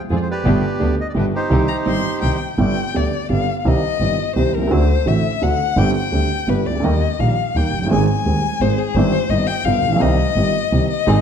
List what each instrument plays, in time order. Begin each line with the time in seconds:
0.10 double bass F2, upright piano F2 F3 G#3 C4 G#4, string section C4 F4 G#4
0.16 bandoneon D5
0.22 bandoneon C5
0.31 bandoneon G4 B4 D5
0.45 double bass G1, upright piano G1 G2 D3 G3 B3 G4, string section B3 D4 G4
0.80 upright piano D2 D3 G3 B3 G4, double bass D2, string section B3 D4 G4
1.00 bandoneon D#5
1.09 bandoneon D5
1.14 upright piano G1 G2 D3 G3 B3 G4, double bass G1, string section B3 D4 G4
1.19 bandoneon B4
1.35 bandoneon D#4 G4 C5
1.50 upright piano C2 C3 D#3 G3 C4 G4, double bass C2, string section C4 D#4 G4
1.68 violin A#5
1.85 upright piano G1 G2 D#3 G3 C4 G4, double bass G1, string section C4 D#4 G4, violin C6
2.22 upright piano C2 C3 D#3 G3 C4 G4, double bass C2, string section C4 D#4 G4, violin G5
2.58 upright piano G1 G2 D3 G3 B3 G4, double bass G1, violin G5
2.94 upright piano D2 D3 G3 B3 G4, double bass D2, violin D5
3.30 upright piano G1 G2 D3 G3 B3 G4, double bass G1, violin F5
3.60 violin F5
3.65 upright piano C2 C3 D#3 G3 C4 G4, double bass C2, violin D#5
4.00 double bass G1, upright piano G1 G2 D#3 G3 C4 G4
4.36 double bass C2, upright piano C2 C3 D#3 G3 C4 G4, violin C5
4.53 double bass C2, violin A#4
4.58 upright piano B1
4.62 upright piano C2
4.67 upright piano C#2 D2 D3 A3 C4 F#4, double bass D2
4.71 violin C5
5.06 double bass A1, upright piano A1 A2 D3 A3 C4 F#4, violin E5
5.42 double bass D2, upright piano D2 D3 A3 C4 F#4, violin F#5
5.76 upright piano G1 G2 D3 G3 C4 G4, double bass G1, violin G5
5.95 violin G5
6.12 double bass D2, upright piano D2 D3 G3 C4 G4
6.47 upright piano G1 G2 D3 G3 B3 G4, double bass G1, violin B4
6.66 double bass C#2, violin D5
6.70 upright piano C2
6.75 upright piano C#2
6.80 upright piano D2
6.84 double bass D#2, upright piano D#2 D#3 G3 A#3 G4, violin D#5
7.19 upright piano A#1 A#2 D#3 G3 A#3 G4, double bass A#1, violin F5
7.55 double bass D#2, upright piano D#2 D#3 G3 A#3 G4, violin G5
7.73 double bass F#1
7.79 upright piano F1 F#1
7.87 upright piano G1, double bass G#1
7.91 upright piano G#1 G#2 D#3 G#3 C4 G#4, violin G#5
8.09 violin G#5
8.26 upright piano D#1 D#2 D#3 G#3 C4 G#4, double bass D#2
8.61 double bass G#1, upright piano G#1 G#2 D#3 G#3 C4 G#4, violin C5
8.78 violin G#4
8.95 double bass G1, upright piano G1 G2 D#3 G3 C4 G4, violin C5
9.30 double bass G1, upright piano G1 G2 D#3 G3 C4 G4, violin D#5
9.47 violin G5
9.65 double bass G1, upright piano G1 G2 D3 G3 B3 F4, violin F5
9.82 double bass A#1
9.88 upright piano A1 A#1
9.96 upright piano B1 D#3 G3, double bass C2
10.00 upright piano C2 C3 C4 G4, violin D#5
10.36 double bass G1, upright piano G1 G2 D#3 G3 C4 G4
10.71 double bass C2, upright piano C2 C3 D#3 G3 C4 G4
10.90 violin D#5
11.07 upright piano G#1 G#2 D#3 G#3 C4 G#4, double bass G#1, string section C4 D#4 G#4